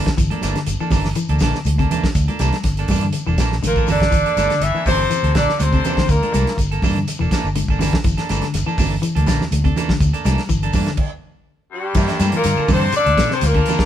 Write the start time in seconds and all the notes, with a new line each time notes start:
Already playing: D3
0.06 kick, snare, closed hi-hat, shekere
0.17 G1 E3, kick, closed hi-hat, shekere
0.30 A#3 D4 A4, closed hi-hat, high conga, shekere
0.41 G1 E3 A#3 D4 A4, snare, closed hi-hat, high conga, shekere
0.55 D3, snare, closed hi-hat, shekere
0.66 G1, closed hi-hat, shekere
0.80 E3 A#3 D4 A4, shekere
0.91 G1 E3 A#3 D4 A4, kick, snare, open hi-hat, high conga, low conga, shekere
1.04 snare, shekere
1.15 E3, closed hi-hat, shekere
1.28 D2 A#3 D4 A4, closed hi-hat, shekere
1.39 A#1 D3 E3 A#3, kick, snare, closed hi-hat, high conga, shekere
1.43 D4 A4
1.52 snare, shekere
1.64 D2, closed hi-hat, high conga, shekere
1.78 C3 A#3 D4 A4, kick, closed hi-hat, shekere
1.91 E3 A#3 D4 A4, closed hi-hat, high conga, low conga, shekere
2.03 kick, snare, shekere
2.14 D2, kick, closed hi-hat, shekere
2.27 A#3 D4 A4, muted fingered electric bass stroke, closed hi-hat, high conga, shekere
2.39 C2 E3 G3 A#3 D4 A4, snare, closed hi-hat, high conga, shekere
2.52 snare, closed hi-hat
2.64 G1, muted clean electric guitar stroke, kick, snare, closed hi-hat, shekere
2.77 A#3 D4 A4, closed hi-hat, shekere
2.88 G2 E3 A#3 D4 A4, kick, open hi-hat, high conga, low conga, shekere
3.01 D3, closed hi-hat, shekere
3.12 closed hi-hat, shekere
3.26 E1 E3 A#3 D4 A4, shekere
3.38 A#1 E3 A#3 D4 A4, kick, snare, closed hi-hat, high conga, shekere
3.52 snare
3.63 A1 A#2 D3, closed hi-hat, high conga, shekere
3.67 A#3 A#4
3.76 A#3 D4 A4, kick, shekere
3.87 G1 D3 E3 A#3 D4 A4, muted clean electric guitar stroke, open hi-hat, low conga, shekere
3.92 D4 D5
4.01 kick, snare, closed hi-hat, shekere
4.11 G1 E3, kick, closed hi-hat, shekere
4.25 A#3 D4 A4, closed hi-hat, shekere
4.36 G1 E3 A#3 D4 A4, snare, closed hi-hat, high conga, shekere
4.50 D3, snare, closed hi-hat, shekere
4.61 G1 E3 E4 E5, closed hi-hat, shekere
4.75 E3 A#3 D4, shekere
4.86 G1 C3 E3 A#3 D4 A4 C5, kick, open hi-hat, high conga, low conga, shekere
4.90 C4
5.00 shekere
5.10 E3, closed hi-hat, shekere
5.23 D2 A#3 A4, closed hi-hat, shekere
5.34 A#1 D3 E3 A#3 D4 A4 D5, kick, snare, closed hi-hat, high conga, shekere
5.39 D4
5.49 snare, shekere
5.59 D2 C3 C4 C5, closed hi-hat, high conga, shekere
5.73 C3 A#3 D4 A4, kick, closed hi-hat, shekere
5.85 E3 A#3 D4 A4, closed hi-hat, low conga, shekere
5.96 D3, kick, snare, high conga, shekere
6.08 D2 A#2 A#3 A#4, kick, closed hi-hat, shekere
6.23 A#3 D4 A4, muted fingered electric bass stroke, closed hi-hat, high conga, shekere
6.32 C2 E3 G3 A#3 D4 A4, closed hi-hat, high conga, shekere
6.47 snare, closed hi-hat
6.57 G1, muted clean electric guitar stroke, kick, closed hi-hat, shekere
6.71 A#3 A4, closed hi-hat, shekere
6.82 G2 E3 A#3 D4 A4, kick, open hi-hat, high conga, low conga, shekere
6.94 D3, closed hi-hat, shekere
7.08 closed hi-hat, shekere
7.19 E1 E3 A#3 D4 A4, shekere
7.31 E3 A#3 D4 A4, kick, snare, closed hi-hat, high conga, shekere
7.44 G1, shekere
7.55 D3, closed hi-hat, high conga, shekere
7.68 G1 A#3 D4 A4, kick, shekere
7.79 D3 E3 A#3 D4 A4, snare, open hi-hat, low conga, shekere
7.93 muted fingered electric bass stroke, kick, snare, closed hi-hat
8.04 G1 E3, kick, closed hi-hat, shekere
8.17 A#3 D4 A4, snare, closed hi-hat, shekere
8.29 G1 E3 A#3 D4 A4, snare, closed hi-hat, high conga, shekere
8.42 D3, snare, closed hi-hat
8.54 G1, snare, closed hi-hat, shekere
8.66 E3 A#3 D4 A4, shekere
8.78 G1 E3 A#3 D4 A4, kick, open hi-hat, high conga, low conga, shekere
8.92 shekere
9.02 E3, closed hi-hat, shekere
9.15 D2 A#3 D4 A4, closed hi-hat, high conga, shekere
9.26 A#1 D3 E3 A#3 D4 A4, kick, snare, closed hi-hat, high conga, shekere
9.40 snare, low conga, shekere
9.51 D2, closed hi-hat, high conga, shekere
9.64 C3 D4 A4, muted clean electric guitar stroke, kick, closed hi-hat, shekere
9.76 E3 A#3 D4 A4, closed hi-hat, low conga, shekere
9.89 D3, kick, snare, high conga, shekere
10.00 D2, kick, closed hi-hat, shekere
10.13 A#3 D4 A4, muted fingered electric bass stroke, closed hi-hat, shekere
10.25 C2 E3 G3 A#3 D4 A4, snare, closed hi-hat, high conga, shekere
10.38 snare, closed hi-hat, shekere
10.49 G1 E3, kick, closed hi-hat, shekere
10.62 A#3 D4 A4, closed hi-hat, shekere
10.73 G2 E3 A#3 D4 A4, kick, open hi-hat, high conga, low conga, shekere
10.86 D3, snare, closed hi-hat, shekere
10.97 kick, crash
11.71 G2 G3 G4
11.95 G2 E3 A#3 D4, muted clean electric guitar stroke, kick, crash, shekere
12.08 A#3 D4 A4, snare, closed hi-hat, shekere
12.20 G2 E3 G3 A#3 D4 A4, snare, closed hi-hat, high conga, shekere
12.32 A#2 E3, closed hi-hat, shekere
12.36 A#3 A#4
12.44 G2 D3, closed hi-hat, shekere
12.56 A#3 D4 A4, muted fingered electric bass stroke, shekere
12.67 G2 D3 E3 A#3 D4 A4, kick, open hi-hat, high conga, low conga, shekere
12.72 C3 C4 C5
12.81 shekere
12.92 D4, muted clean electric guitar stroke, closed hi-hat, shekere
12.96 D3 D5
13.06 D2 D4 A4, closed hi-hat, high conga, shekere
13.17 A#2 E3 D4 A4, kick, snare, closed hi-hat, high conga, shekere
13.30 C3 C4 C5, snare, shekere
13.35 C3
13.41 D2 A#2 A#3, closed hi-hat, high conga, shekere
13.47 A#4
13.55 D3 A#3 D4 A4, kick, closed hi-hat, shekere
13.66 E3 A#3 D4 A4, closed hi-hat, low conga, shekere
13.79 kick, snare, shekere